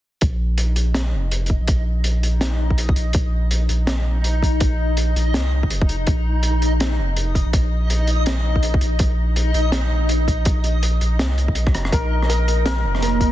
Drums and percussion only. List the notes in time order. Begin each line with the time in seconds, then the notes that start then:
0.21 kick, closed hi-hat
0.58 closed hi-hat
0.76 closed hi-hat
0.94 snare, closed hi-hat
1.31 closed hi-hat
1.46 kick, closed hi-hat
1.68 kick, closed hi-hat
2.04 closed hi-hat
2.23 closed hi-hat
2.41 snare, closed hi-hat
2.70 kick
2.78 closed hi-hat
2.89 kick
2.96 closed hi-hat
3.13 kick, closed hi-hat
3.51 closed hi-hat
3.69 closed hi-hat
3.87 snare, closed hi-hat
4.24 closed hi-hat
4.43 kick, closed hi-hat
4.60 kick, closed hi-hat
4.97 closed hi-hat
5.16 closed hi-hat
5.34 snare, closed hi-hat
5.63 kick
5.70 closed hi-hat
5.81 kick
5.89 closed hi-hat
6.07 kick, closed hi-hat
6.43 closed hi-hat
6.62 closed hi-hat
6.80 snare, closed hi-hat
7.16 closed hi-hat
7.35 kick, closed hi-hat
7.53 kick, closed hi-hat
7.90 closed hi-hat
8.07 closed hi-hat
8.26 snare, closed hi-hat
8.56 kick
8.63 closed hi-hat
8.74 kick
8.81 closed hi-hat
8.99 kick, closed hi-hat
9.36 closed hi-hat
9.54 closed hi-hat
9.72 snare, closed hi-hat
10.09 closed hi-hat
10.28 kick, closed hi-hat
10.45 kick, closed hi-hat
10.64 closed hi-hat
10.83 closed hi-hat
11.01 closed hi-hat
11.19 snare, closed hi-hat
11.38 closed hi-hat
11.48 kick
11.55 closed hi-hat
11.67 kick, cross-stick
11.74 cross-stick, closed hi-hat
11.85 cross-stick
11.92 kick, closed hi-hat
12.23 cross-stick
12.30 closed hi-hat
12.48 closed hi-hat
12.66 snare, closed hi-hat
12.95 cross-stick
12.99 cross-stick
13.02 cross-stick, closed hi-hat
13.08 cross-stick
13.21 kick, closed hi-hat